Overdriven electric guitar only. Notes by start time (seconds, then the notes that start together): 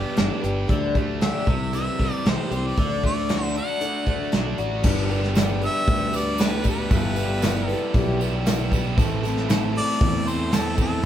Already playing: G3 B3 D4 G4
0.18 D4
0.44 G4
0.69 D3
0.96 A3
1.21 G4
1.47 C3
1.73 E3
1.98 G3
2.25 C4
2.51 G4
2.78 D3
3.04 A3
3.29 F#4
3.54 D4
3.80 D3
4.06 A3
4.32 D4
4.58 F#4
4.83 G2 D3 G3 B3 D4 G4
5.10 G3 B3 D4 G4
5.35 G2 D3 G3 B3 D4 G4
6.13 G3 B3 D4 G4
6.39 G3 B3 D4 G4
6.64 G3 B3 D4 G4
6.90 G3 B3 E4 G4
7.16 B3 E4 G4
7.41 G3 B3 E4 G4
8.19 B3 E4 G4
8.46 G3 B3 E4 G4
8.71 B3 E4 G4
8.97 A2 E3 C4 E4 A4
9.23 C4 E4 A4
9.48 A2 E3 C4 E4 A4
10.26 C4 E4 A4
10.51 E3 C4 E4 A4
10.77 C4 E4 A4